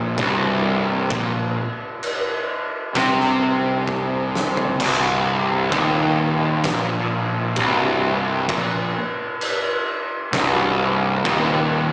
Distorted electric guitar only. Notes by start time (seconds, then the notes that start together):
Already playing: A#2
0.19 C2
1.10 A#2
2.95 C3
4.81 C2
5.73 D#2
6.65 A#2
7.58 C2
8.49 A#2
10.33 C2
11.25 D#2